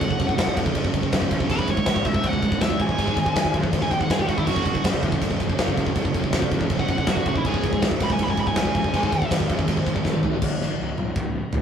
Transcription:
Already playing: F#3 C#4 G#4 A4 F#5
0.01 F#1 F#2 C#3, kick, crash
0.11 kick
0.20 F#1 F#2 C#3, kick, crash
0.29 F#2 C#3, kick
0.38 F#1 F#2 C#3, kick, snare, crash
0.48 kick
0.57 E2 F#2 C#3, kick, crash
0.66 F#2 C#3, kick
0.75 F#1 F#2 C#3, kick, crash
0.85 F#2 C#3, kick
0.94 F#1 F#2 C#3, kick, crash
1.03 F#2 C#3, kick
1.13 F#1 F#2 C#3, kick, snare, crash
1.22 F#2 C#3, kick
1.31 C2 F#2 C#3, kick, crash
1.40 F#2 C#3, kick
1.49 C#1 C#2 G#2 C#3 G#3 D#4 E4 B4, kick, crash
1.59 kick
1.68 C#1 C#2 G#2 C#5, kick, crash
1.77 C#2 G#2, kick
1.86 C#1 C#2 G#2, kick, snare, crash
1.96 kick
2.05 C2 C#2 G#2 E5, kick, crash
2.14 C#2 G#2, kick
2.23 C#1 C#2 G#2 F#5, kick, crash
2.33 C#2 G#2, kick
2.42 C#1 C#2 G#2, kick, crash
2.52 C#2 G#2, kick
2.60 C#1 C#2 G#2 E5, kick, snare, crash
2.70 C#2 G#2, kick
2.79 A1 C#2 G#2 G#5, kick, crash
2.88 C#2 G#2, kick
2.97 G#1 G#2 D#3 G#3 G#4 C5, kick, crash
3.08 kick
3.17 G#1 G#2 D#3, kick, crash
3.26 G#2 D#3, kick
3.36 G#1 G#2 D#3, kick, snare, crash
3.45 kick
3.54 F#2 G#2 D#3, kick, crash
3.63 G#2 D#3, kick
3.73 G#1 G#2 D#3, kick, crash
3.81 G#2 D#3 G#5, kick
3.91 G#1 G#2 D#3 G5, kick, crash
4.01 G#2 D#3 F#5, kick
4.10 G#1 G#2 D#3 G#4, kick, snare, crash
4.19 G#2 D#3 G4, kick
4.27 G#1 G#2 D#3 F#4, kick, crash
4.38 G#2 D#3 E4, kick
4.44 F#1 F#2 C#3 F#3 C#4 F#4 A4, kick, crash
4.48 F#3
4.56 kick
4.66 F#1 F#2 C#3, kick, crash
4.75 F#2 C#3, kick
4.84 F#1 F#2 C#3, kick, snare, crash
4.94 kick
5.03 E2 F#2 C#3, kick, crash
5.12 F#2 C#3, kick
5.22 F#1 F#2 C#3, kick, crash
5.31 F#2 C#3, kick
5.40 F#1 F#2 C#3, kick, crash
5.50 F#2 C#3, kick
5.58 F#1 F#2 C#3, kick, snare, crash
5.68 F#2 C#3, kick
5.76 F#1 F#2 C#3, kick, crash
5.86 F#2 C#3, kick
5.96 F#1 F#2 C#3, kick, crash
6.05 kick
6.14 F#1 F#2 C#3, kick, crash
6.24 F#2 C#3, kick
6.33 F#1 F#2 C#3, kick, snare, crash
6.42 kick
6.51 E2 F#2 C#3, kick, crash
6.61 F#2 C#3, kick
6.70 F#1 F#2 C#3, kick, crash
6.79 F#2 C#3 F#5, kick
6.88 F#1 F#2 C#3 F#5, kick, crash
6.98 F#2 C#3 F#5, kick
7.07 F#1 F#2 C#3 F#4, kick, snare, crash
7.17 F#2 C#3 F#4, kick
7.26 D#1 F#2 C#3 F#4, kick, crash
7.36 F#2 C#3 E4, kick
7.44 C#1 C#2 G#2 C#3 G#3 D#4 E4 G#4, kick, crash
7.54 kick
7.64 C#1 C#2 G#2, kick, crash
7.73 C#2 G#2, kick
7.82 C#1 C#2 G#2, kick, snare, crash
7.91 kick
8.00 C2 C#2 G#2 B5, kick, crash
8.10 C#2 G#2 G#5, kick
8.19 C#1 C#2 G#2 B5, kick, crash
8.28 C#2 G#2 G#5, kick
8.37 C#1 C#2 G#2 B5, kick, crash
8.47 C#2 G#2 G#5, kick
8.56 C#1 C#2 G#2 G#5, kick, snare, crash
8.65 C#2 G#2, kick
8.75 C#1 C#2 G#2, kick, crash
8.84 C#2 G#2, kick
8.92 G#1 G#2 D#3 G#3 G#4 C5, kick, crash
9.03 kick
9.12 G#1 G#2 D#3, kick, crash
9.22 G#2 D#3, kick
9.31 G#1 G#2 D#3, kick, snare, crash
9.40 kick
9.49 F#2 G#2 D#3, kick, crash
9.58 G#2 D#3, kick
9.68 G#1 G#2 D#3, kick, crash
9.76 G#2 D#3, kick
9.86 G#1 G#2 D#3, kick, crash
9.94 G#2 D#3, kick
10.02 G#1 G#2 D#3, kick, snare
10.07 D#3
10.13 G#2 D#3
10.23 G#1 G#2 D#3, floor tom
10.31 G#2 D#3
10.42 C#1, kick, high tom, crash
10.61 G#1, snare
10.79 C#1
10.98 C#1, mid tom
11.16 C#1, kick
11.53 C#1, floor tom

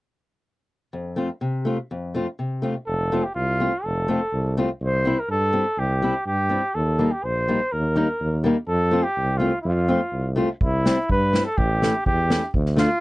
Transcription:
0.93 F2
1.16 A3 C4 F4
1.41 C3
1.65 A3 C4 F4
1.91 F2
2.14 A3 C4 F4
2.39 C3
2.62 A3 C4 F4
2.87 F1 A4
3.12 A3 C4 F4
3.24 G4
3.35 C2 F4
3.60 A3 C4 F4
3.84 F1 A4
4.08 A3 C4 F4
4.33 C2
4.57 A3 C4 F4
4.81 C2 C5
5.05 G3 C4 E4
5.19 A#4
5.29 G2 A4
5.53 G3 C4 E4
5.78 C2 G4
6.02 G3 C4 E4
6.26 G2 G4
6.49 G3 C4 E4
6.75 D#2 A4
6.99 G3 A#3 D#4
7.11 G4
7.24 A#1 C5
7.48 G3 A#3 D#4
7.72 D#2 A#4
7.95 G3 A#3 D#4
8.20 D#2
8.44 G3 A#3 D#4
8.68 F2 A4
8.91 A3 C4 F4
9.03 G4
9.17 C2
9.37 A3 C4 F4
9.62 F2 F4
9.88 A3 C4 F4
10.12 C2
10.36 A3 C4 F4
10.61 C2 E4, kick
10.85 G3 C4 E4, snare
11.10 G2 B4, kick
11.33 G3 C4 E4, snare
11.45 A4
11.57 A1 G4, kick
11.82 A3 C#4 E4, snare
12.06 E2 G4, kick
12.30 A3 C#4 E4, snare
12.54 D2, kick
12.66 snare
12.76 A3 D4 F4, snare

